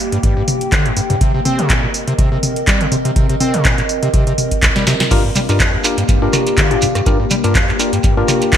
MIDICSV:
0, 0, Header, 1, 6, 480
1, 0, Start_track
1, 0, Key_signature, -2, "minor"
1, 0, Tempo, 487805
1, 1191, Time_signature, 4, 2, 24, 8
1, 8437, End_track
2, 0, Start_track
2, 0, Title_t, "Ambient pad"
2, 0, Program_c, 0, 92
2, 0, Note_on_c, 0, 58, 77
2, 0, Note_on_c, 0, 67, 65
2, 0, Note_on_c, 0, 79, 80
2, 1152, Note_off_c, 0, 58, 0
2, 1152, Note_off_c, 0, 67, 0
2, 1171, Note_off_c, 0, 79, 0
2, 1190, Note_on_c, 0, 70, 67
2, 1190, Note_on_c, 0, 75, 81
2, 1191, Note_on_c, 0, 60, 74
2, 4992, Note_off_c, 0, 60, 0
2, 4992, Note_off_c, 0, 70, 0
2, 4992, Note_off_c, 0, 75, 0
2, 5029, Note_on_c, 0, 58, 77
2, 5030, Note_on_c, 0, 67, 69
2, 5030, Note_on_c, 0, 77, 79
2, 6931, Note_off_c, 0, 77, 0
2, 6950, Note_on_c, 0, 79, 84
2, 8437, Note_off_c, 0, 58, 0
2, 8437, Note_off_c, 0, 67, 0
2, 8437, Note_off_c, 0, 79, 0
2, 8437, End_track
3, 0, Start_track
3, 0, Title_t, "Synth stab"
3, 0, Program_c, 1, 62
3, 5030, Note_on_c, 1, 62, 94
3, 5030, Note_on_c, 1, 65, 86
3, 5030, Note_on_c, 1, 67, 80
3, 5030, Note_on_c, 1, 70, 104
3, 5148, Note_off_c, 1, 62, 0
3, 5148, Note_off_c, 1, 65, 0
3, 5148, Note_off_c, 1, 67, 0
3, 5148, Note_off_c, 1, 70, 0
3, 5402, Note_on_c, 1, 62, 82
3, 5402, Note_on_c, 1, 65, 74
3, 5402, Note_on_c, 1, 67, 72
3, 5402, Note_on_c, 1, 70, 92
3, 5499, Note_off_c, 1, 62, 0
3, 5499, Note_off_c, 1, 65, 0
3, 5499, Note_off_c, 1, 67, 0
3, 5499, Note_off_c, 1, 70, 0
3, 5750, Note_on_c, 1, 62, 71
3, 5750, Note_on_c, 1, 65, 67
3, 5750, Note_on_c, 1, 67, 67
3, 5750, Note_on_c, 1, 70, 77
3, 5868, Note_off_c, 1, 62, 0
3, 5868, Note_off_c, 1, 65, 0
3, 5868, Note_off_c, 1, 67, 0
3, 5868, Note_off_c, 1, 70, 0
3, 6122, Note_on_c, 1, 62, 82
3, 6122, Note_on_c, 1, 65, 77
3, 6122, Note_on_c, 1, 67, 78
3, 6122, Note_on_c, 1, 70, 91
3, 6570, Note_off_c, 1, 62, 0
3, 6570, Note_off_c, 1, 65, 0
3, 6570, Note_off_c, 1, 67, 0
3, 6570, Note_off_c, 1, 70, 0
3, 6602, Note_on_c, 1, 62, 84
3, 6602, Note_on_c, 1, 65, 76
3, 6602, Note_on_c, 1, 67, 76
3, 6602, Note_on_c, 1, 74, 85
3, 6767, Note_off_c, 1, 62, 0
3, 6767, Note_off_c, 1, 65, 0
3, 6767, Note_off_c, 1, 67, 0
3, 6767, Note_off_c, 1, 74, 0
3, 6950, Note_on_c, 1, 62, 92
3, 6950, Note_on_c, 1, 65, 84
3, 6950, Note_on_c, 1, 67, 88
3, 6950, Note_on_c, 1, 70, 100
3, 7068, Note_off_c, 1, 62, 0
3, 7068, Note_off_c, 1, 65, 0
3, 7068, Note_off_c, 1, 67, 0
3, 7068, Note_off_c, 1, 70, 0
3, 7322, Note_on_c, 1, 62, 85
3, 7322, Note_on_c, 1, 65, 72
3, 7322, Note_on_c, 1, 67, 77
3, 7322, Note_on_c, 1, 70, 94
3, 7419, Note_off_c, 1, 62, 0
3, 7419, Note_off_c, 1, 65, 0
3, 7419, Note_off_c, 1, 67, 0
3, 7419, Note_off_c, 1, 70, 0
3, 7670, Note_on_c, 1, 62, 74
3, 7670, Note_on_c, 1, 65, 66
3, 7670, Note_on_c, 1, 67, 65
3, 7670, Note_on_c, 1, 70, 82
3, 7788, Note_off_c, 1, 62, 0
3, 7788, Note_off_c, 1, 65, 0
3, 7788, Note_off_c, 1, 67, 0
3, 7788, Note_off_c, 1, 70, 0
3, 8042, Note_on_c, 1, 62, 83
3, 8042, Note_on_c, 1, 65, 82
3, 8042, Note_on_c, 1, 67, 82
3, 8042, Note_on_c, 1, 70, 99
3, 8437, Note_off_c, 1, 62, 0
3, 8437, Note_off_c, 1, 65, 0
3, 8437, Note_off_c, 1, 67, 0
3, 8437, Note_off_c, 1, 70, 0
3, 8437, End_track
4, 0, Start_track
4, 0, Title_t, "Acid bass"
4, 0, Program_c, 2, 38
4, 122, Note_on_c, 2, 43, 74
4, 181, Note_off_c, 2, 43, 0
4, 230, Note_on_c, 2, 43, 84
4, 339, Note_off_c, 2, 43, 0
4, 362, Note_on_c, 2, 43, 78
4, 422, Note_off_c, 2, 43, 0
4, 710, Note_on_c, 2, 50, 75
4, 842, Note_on_c, 2, 43, 76
4, 856, Note_off_c, 2, 50, 0
4, 902, Note_off_c, 2, 43, 0
4, 950, Note_on_c, 2, 43, 71
4, 994, Note_off_c, 2, 43, 0
4, 1082, Note_on_c, 2, 43, 76
4, 1142, Note_off_c, 2, 43, 0
4, 1190, Note_on_c, 2, 48, 80
4, 1299, Note_off_c, 2, 48, 0
4, 1322, Note_on_c, 2, 48, 73
4, 1382, Note_off_c, 2, 48, 0
4, 1430, Note_on_c, 2, 60, 77
4, 1562, Note_on_c, 2, 48, 75
4, 1577, Note_off_c, 2, 60, 0
4, 1670, Note_on_c, 2, 46, 99
4, 1685, Note_off_c, 2, 48, 0
4, 1779, Note_off_c, 2, 46, 0
4, 1802, Note_on_c, 2, 46, 72
4, 1838, Note_off_c, 2, 46, 0
4, 2042, Note_on_c, 2, 48, 74
4, 2102, Note_off_c, 2, 48, 0
4, 2150, Note_on_c, 2, 48, 81
4, 2259, Note_off_c, 2, 48, 0
4, 2282, Note_on_c, 2, 48, 78
4, 2342, Note_off_c, 2, 48, 0
4, 2630, Note_on_c, 2, 55, 76
4, 2762, Note_on_c, 2, 48, 74
4, 2776, Note_off_c, 2, 55, 0
4, 2822, Note_off_c, 2, 48, 0
4, 2870, Note_on_c, 2, 48, 73
4, 2914, Note_off_c, 2, 48, 0
4, 3002, Note_on_c, 2, 48, 74
4, 3062, Note_off_c, 2, 48, 0
4, 3111, Note_on_c, 2, 48, 78
4, 3219, Note_off_c, 2, 48, 0
4, 3242, Note_on_c, 2, 48, 77
4, 3302, Note_off_c, 2, 48, 0
4, 3351, Note_on_c, 2, 60, 78
4, 3482, Note_on_c, 2, 48, 76
4, 3497, Note_off_c, 2, 60, 0
4, 3590, Note_on_c, 2, 46, 96
4, 3605, Note_off_c, 2, 48, 0
4, 3699, Note_off_c, 2, 46, 0
4, 3722, Note_on_c, 2, 46, 73
4, 3758, Note_off_c, 2, 46, 0
4, 3962, Note_on_c, 2, 48, 78
4, 4022, Note_off_c, 2, 48, 0
4, 4070, Note_on_c, 2, 48, 85
4, 4179, Note_off_c, 2, 48, 0
4, 4202, Note_on_c, 2, 48, 80
4, 4262, Note_off_c, 2, 48, 0
4, 4550, Note_on_c, 2, 36, 75
4, 4623, Note_off_c, 2, 36, 0
4, 4682, Note_on_c, 2, 55, 77
4, 4771, Note_off_c, 2, 55, 0
4, 4790, Note_on_c, 2, 48, 98
4, 4863, Note_off_c, 2, 48, 0
4, 4921, Note_on_c, 2, 48, 78
4, 4958, Note_off_c, 2, 48, 0
4, 5030, Note_on_c, 2, 43, 75
4, 5139, Note_off_c, 2, 43, 0
4, 5162, Note_on_c, 2, 43, 73
4, 5222, Note_off_c, 2, 43, 0
4, 5270, Note_on_c, 2, 55, 74
4, 5314, Note_off_c, 2, 55, 0
4, 5402, Note_on_c, 2, 43, 98
4, 5510, Note_on_c, 2, 41, 96
4, 5524, Note_off_c, 2, 43, 0
4, 5619, Note_off_c, 2, 41, 0
4, 5641, Note_on_c, 2, 41, 73
4, 5677, Note_off_c, 2, 41, 0
4, 5881, Note_on_c, 2, 43, 77
4, 5941, Note_off_c, 2, 43, 0
4, 5989, Note_on_c, 2, 43, 79
4, 6099, Note_off_c, 2, 43, 0
4, 6121, Note_on_c, 2, 43, 78
4, 6181, Note_off_c, 2, 43, 0
4, 6470, Note_on_c, 2, 50, 77
4, 6602, Note_on_c, 2, 43, 72
4, 6616, Note_off_c, 2, 50, 0
4, 6661, Note_off_c, 2, 43, 0
4, 6710, Note_on_c, 2, 43, 75
4, 6754, Note_off_c, 2, 43, 0
4, 6841, Note_on_c, 2, 43, 71
4, 6901, Note_off_c, 2, 43, 0
4, 6949, Note_on_c, 2, 43, 76
4, 7059, Note_off_c, 2, 43, 0
4, 7081, Note_on_c, 2, 43, 74
4, 7141, Note_off_c, 2, 43, 0
4, 7190, Note_on_c, 2, 55, 77
4, 7234, Note_off_c, 2, 55, 0
4, 7322, Note_on_c, 2, 43, 104
4, 7430, Note_on_c, 2, 41, 103
4, 7445, Note_off_c, 2, 43, 0
4, 7539, Note_off_c, 2, 41, 0
4, 7562, Note_on_c, 2, 41, 76
4, 7598, Note_off_c, 2, 41, 0
4, 7802, Note_on_c, 2, 43, 73
4, 7862, Note_off_c, 2, 43, 0
4, 7910, Note_on_c, 2, 43, 83
4, 8019, Note_off_c, 2, 43, 0
4, 8042, Note_on_c, 2, 43, 82
4, 8102, Note_off_c, 2, 43, 0
4, 8390, Note_on_c, 2, 50, 75
4, 8437, Note_off_c, 2, 50, 0
4, 8437, End_track
5, 0, Start_track
5, 0, Title_t, "Shekere"
5, 5027, Note_on_c, 9, 82, 48
5, 5126, Note_off_c, 9, 82, 0
5, 5270, Note_on_c, 9, 82, 82
5, 5369, Note_off_c, 9, 82, 0
5, 5405, Note_on_c, 9, 82, 40
5, 5503, Note_off_c, 9, 82, 0
5, 5511, Note_on_c, 9, 82, 55
5, 5610, Note_off_c, 9, 82, 0
5, 5748, Note_on_c, 9, 82, 95
5, 5847, Note_off_c, 9, 82, 0
5, 5878, Note_on_c, 9, 82, 34
5, 5977, Note_off_c, 9, 82, 0
5, 5987, Note_on_c, 9, 82, 55
5, 6085, Note_off_c, 9, 82, 0
5, 6231, Note_on_c, 9, 82, 76
5, 6330, Note_off_c, 9, 82, 0
5, 6366, Note_on_c, 9, 82, 37
5, 6464, Note_off_c, 9, 82, 0
5, 6465, Note_on_c, 9, 82, 51
5, 6563, Note_off_c, 9, 82, 0
5, 6705, Note_on_c, 9, 82, 83
5, 6803, Note_off_c, 9, 82, 0
5, 6845, Note_on_c, 9, 82, 38
5, 6943, Note_off_c, 9, 82, 0
5, 6949, Note_on_c, 9, 82, 47
5, 7048, Note_off_c, 9, 82, 0
5, 7189, Note_on_c, 9, 82, 85
5, 7287, Note_off_c, 9, 82, 0
5, 7320, Note_on_c, 9, 82, 40
5, 7419, Note_off_c, 9, 82, 0
5, 7428, Note_on_c, 9, 82, 51
5, 7527, Note_off_c, 9, 82, 0
5, 7673, Note_on_c, 9, 82, 93
5, 7771, Note_off_c, 9, 82, 0
5, 7801, Note_on_c, 9, 82, 36
5, 7899, Note_off_c, 9, 82, 0
5, 7906, Note_on_c, 9, 82, 53
5, 8004, Note_off_c, 9, 82, 0
5, 8153, Note_on_c, 9, 82, 86
5, 8251, Note_off_c, 9, 82, 0
5, 8280, Note_on_c, 9, 82, 35
5, 8378, Note_off_c, 9, 82, 0
5, 8387, Note_on_c, 9, 82, 49
5, 8437, Note_off_c, 9, 82, 0
5, 8437, End_track
6, 0, Start_track
6, 0, Title_t, "Drums"
6, 122, Note_on_c, 9, 42, 48
6, 220, Note_off_c, 9, 42, 0
6, 230, Note_on_c, 9, 36, 105
6, 230, Note_on_c, 9, 42, 61
6, 328, Note_off_c, 9, 42, 0
6, 329, Note_off_c, 9, 36, 0
6, 470, Note_on_c, 9, 46, 101
6, 470, Note_on_c, 9, 47, 93
6, 568, Note_off_c, 9, 46, 0
6, 568, Note_off_c, 9, 47, 0
6, 602, Note_on_c, 9, 42, 49
6, 700, Note_off_c, 9, 42, 0
6, 710, Note_on_c, 9, 36, 113
6, 710, Note_on_c, 9, 42, 60
6, 713, Note_on_c, 9, 39, 104
6, 808, Note_off_c, 9, 42, 0
6, 809, Note_off_c, 9, 36, 0
6, 811, Note_off_c, 9, 39, 0
6, 842, Note_on_c, 9, 42, 33
6, 940, Note_off_c, 9, 42, 0
6, 950, Note_on_c, 9, 46, 101
6, 1048, Note_off_c, 9, 46, 0
6, 1082, Note_on_c, 9, 42, 50
6, 1082, Note_on_c, 9, 47, 91
6, 1180, Note_off_c, 9, 42, 0
6, 1180, Note_off_c, 9, 47, 0
6, 1190, Note_on_c, 9, 36, 107
6, 1190, Note_on_c, 9, 42, 61
6, 1289, Note_off_c, 9, 36, 0
6, 1289, Note_off_c, 9, 42, 0
6, 1430, Note_on_c, 9, 46, 89
6, 1430, Note_on_c, 9, 47, 89
6, 1529, Note_off_c, 9, 46, 0
6, 1529, Note_off_c, 9, 47, 0
6, 1562, Note_on_c, 9, 42, 50
6, 1661, Note_off_c, 9, 42, 0
6, 1670, Note_on_c, 9, 36, 106
6, 1670, Note_on_c, 9, 42, 66
6, 1673, Note_on_c, 9, 39, 111
6, 1769, Note_off_c, 9, 36, 0
6, 1769, Note_off_c, 9, 42, 0
6, 1772, Note_off_c, 9, 39, 0
6, 1910, Note_on_c, 9, 46, 94
6, 2009, Note_off_c, 9, 46, 0
6, 2042, Note_on_c, 9, 42, 49
6, 2140, Note_off_c, 9, 42, 0
6, 2150, Note_on_c, 9, 36, 109
6, 2150, Note_on_c, 9, 42, 62
6, 2249, Note_off_c, 9, 36, 0
6, 2249, Note_off_c, 9, 42, 0
6, 2391, Note_on_c, 9, 46, 93
6, 2391, Note_on_c, 9, 47, 92
6, 2489, Note_off_c, 9, 46, 0
6, 2489, Note_off_c, 9, 47, 0
6, 2522, Note_on_c, 9, 42, 48
6, 2621, Note_off_c, 9, 42, 0
6, 2630, Note_on_c, 9, 36, 110
6, 2630, Note_on_c, 9, 42, 65
6, 2633, Note_on_c, 9, 39, 106
6, 2729, Note_off_c, 9, 36, 0
6, 2729, Note_off_c, 9, 42, 0
6, 2732, Note_off_c, 9, 39, 0
6, 2762, Note_on_c, 9, 42, 33
6, 2861, Note_off_c, 9, 42, 0
6, 2871, Note_on_c, 9, 46, 98
6, 2871, Note_on_c, 9, 47, 84
6, 2969, Note_off_c, 9, 46, 0
6, 2969, Note_off_c, 9, 47, 0
6, 3002, Note_on_c, 9, 42, 52
6, 3100, Note_off_c, 9, 42, 0
6, 3110, Note_on_c, 9, 36, 110
6, 3110, Note_on_c, 9, 42, 63
6, 3209, Note_off_c, 9, 36, 0
6, 3209, Note_off_c, 9, 42, 0
6, 3242, Note_on_c, 9, 42, 37
6, 3340, Note_off_c, 9, 42, 0
6, 3350, Note_on_c, 9, 46, 91
6, 3350, Note_on_c, 9, 47, 82
6, 3448, Note_off_c, 9, 46, 0
6, 3448, Note_off_c, 9, 47, 0
6, 3481, Note_on_c, 9, 42, 50
6, 3580, Note_off_c, 9, 42, 0
6, 3590, Note_on_c, 9, 36, 113
6, 3590, Note_on_c, 9, 42, 67
6, 3593, Note_on_c, 9, 39, 115
6, 3688, Note_off_c, 9, 42, 0
6, 3689, Note_off_c, 9, 36, 0
6, 3691, Note_off_c, 9, 39, 0
6, 3721, Note_on_c, 9, 42, 36
6, 3724, Note_on_c, 9, 39, 39
6, 3820, Note_off_c, 9, 42, 0
6, 3823, Note_off_c, 9, 39, 0
6, 3830, Note_on_c, 9, 46, 93
6, 3928, Note_off_c, 9, 46, 0
6, 3961, Note_on_c, 9, 42, 52
6, 4060, Note_off_c, 9, 42, 0
6, 4070, Note_on_c, 9, 36, 112
6, 4070, Note_on_c, 9, 42, 64
6, 4168, Note_off_c, 9, 42, 0
6, 4169, Note_off_c, 9, 36, 0
6, 4201, Note_on_c, 9, 42, 38
6, 4300, Note_off_c, 9, 42, 0
6, 4310, Note_on_c, 9, 46, 98
6, 4310, Note_on_c, 9, 47, 84
6, 4408, Note_off_c, 9, 46, 0
6, 4408, Note_off_c, 9, 47, 0
6, 4442, Note_on_c, 9, 36, 54
6, 4442, Note_on_c, 9, 42, 53
6, 4540, Note_off_c, 9, 36, 0
6, 4540, Note_off_c, 9, 42, 0
6, 4550, Note_on_c, 9, 36, 105
6, 4550, Note_on_c, 9, 42, 65
6, 4553, Note_on_c, 9, 39, 115
6, 4648, Note_off_c, 9, 36, 0
6, 4649, Note_off_c, 9, 42, 0
6, 4652, Note_off_c, 9, 39, 0
6, 4682, Note_on_c, 9, 38, 48
6, 4682, Note_on_c, 9, 42, 37
6, 4682, Note_on_c, 9, 47, 74
6, 4780, Note_off_c, 9, 38, 0
6, 4780, Note_off_c, 9, 42, 0
6, 4780, Note_off_c, 9, 47, 0
6, 4790, Note_on_c, 9, 38, 77
6, 4790, Note_on_c, 9, 46, 100
6, 4889, Note_off_c, 9, 38, 0
6, 4889, Note_off_c, 9, 46, 0
6, 4922, Note_on_c, 9, 38, 78
6, 4922, Note_on_c, 9, 42, 56
6, 4922, Note_on_c, 9, 47, 83
6, 5020, Note_off_c, 9, 38, 0
6, 5020, Note_off_c, 9, 42, 0
6, 5020, Note_off_c, 9, 47, 0
6, 5030, Note_on_c, 9, 36, 114
6, 5030, Note_on_c, 9, 42, 59
6, 5030, Note_on_c, 9, 49, 68
6, 5128, Note_off_c, 9, 36, 0
6, 5128, Note_off_c, 9, 42, 0
6, 5128, Note_off_c, 9, 49, 0
6, 5270, Note_on_c, 9, 46, 97
6, 5270, Note_on_c, 9, 47, 82
6, 5368, Note_off_c, 9, 46, 0
6, 5368, Note_off_c, 9, 47, 0
6, 5402, Note_on_c, 9, 42, 50
6, 5501, Note_off_c, 9, 42, 0
6, 5510, Note_on_c, 9, 36, 112
6, 5510, Note_on_c, 9, 42, 65
6, 5513, Note_on_c, 9, 39, 121
6, 5608, Note_off_c, 9, 36, 0
6, 5609, Note_off_c, 9, 42, 0
6, 5612, Note_off_c, 9, 39, 0
6, 5750, Note_on_c, 9, 46, 98
6, 5849, Note_off_c, 9, 46, 0
6, 5882, Note_on_c, 9, 42, 53
6, 5981, Note_off_c, 9, 42, 0
6, 5990, Note_on_c, 9, 36, 113
6, 5990, Note_on_c, 9, 42, 63
6, 6088, Note_off_c, 9, 36, 0
6, 6089, Note_off_c, 9, 42, 0
6, 6230, Note_on_c, 9, 37, 76
6, 6230, Note_on_c, 9, 46, 95
6, 6230, Note_on_c, 9, 47, 88
6, 6329, Note_off_c, 9, 37, 0
6, 6329, Note_off_c, 9, 46, 0
6, 6329, Note_off_c, 9, 47, 0
6, 6362, Note_on_c, 9, 42, 52
6, 6460, Note_off_c, 9, 42, 0
6, 6470, Note_on_c, 9, 36, 112
6, 6471, Note_on_c, 9, 42, 62
6, 6474, Note_on_c, 9, 39, 117
6, 6568, Note_off_c, 9, 36, 0
6, 6569, Note_off_c, 9, 42, 0
6, 6572, Note_off_c, 9, 39, 0
6, 6602, Note_on_c, 9, 42, 36
6, 6701, Note_off_c, 9, 42, 0
6, 6710, Note_on_c, 9, 46, 103
6, 6710, Note_on_c, 9, 47, 80
6, 6808, Note_off_c, 9, 46, 0
6, 6808, Note_off_c, 9, 47, 0
6, 6842, Note_on_c, 9, 37, 66
6, 6842, Note_on_c, 9, 42, 53
6, 6940, Note_off_c, 9, 37, 0
6, 6940, Note_off_c, 9, 42, 0
6, 6950, Note_on_c, 9, 36, 121
6, 6950, Note_on_c, 9, 42, 60
6, 7048, Note_off_c, 9, 36, 0
6, 7048, Note_off_c, 9, 42, 0
6, 7190, Note_on_c, 9, 46, 103
6, 7190, Note_on_c, 9, 47, 82
6, 7289, Note_off_c, 9, 46, 0
6, 7289, Note_off_c, 9, 47, 0
6, 7322, Note_on_c, 9, 42, 50
6, 7421, Note_off_c, 9, 42, 0
6, 7430, Note_on_c, 9, 36, 122
6, 7431, Note_on_c, 9, 42, 64
6, 7434, Note_on_c, 9, 39, 121
6, 7528, Note_off_c, 9, 36, 0
6, 7529, Note_off_c, 9, 42, 0
6, 7532, Note_off_c, 9, 39, 0
6, 7565, Note_on_c, 9, 39, 39
6, 7663, Note_off_c, 9, 39, 0
6, 7670, Note_on_c, 9, 46, 99
6, 7769, Note_off_c, 9, 46, 0
6, 7802, Note_on_c, 9, 42, 51
6, 7901, Note_off_c, 9, 42, 0
6, 7910, Note_on_c, 9, 36, 117
6, 7910, Note_on_c, 9, 42, 64
6, 8009, Note_off_c, 9, 36, 0
6, 8009, Note_off_c, 9, 42, 0
6, 8151, Note_on_c, 9, 37, 76
6, 8151, Note_on_c, 9, 46, 99
6, 8151, Note_on_c, 9, 47, 87
6, 8249, Note_off_c, 9, 37, 0
6, 8249, Note_off_c, 9, 46, 0
6, 8249, Note_off_c, 9, 47, 0
6, 8282, Note_on_c, 9, 42, 51
6, 8380, Note_off_c, 9, 42, 0
6, 8390, Note_on_c, 9, 36, 123
6, 8391, Note_on_c, 9, 42, 62
6, 8394, Note_on_c, 9, 39, 118
6, 8437, Note_off_c, 9, 36, 0
6, 8437, Note_off_c, 9, 39, 0
6, 8437, Note_off_c, 9, 42, 0
6, 8437, End_track
0, 0, End_of_file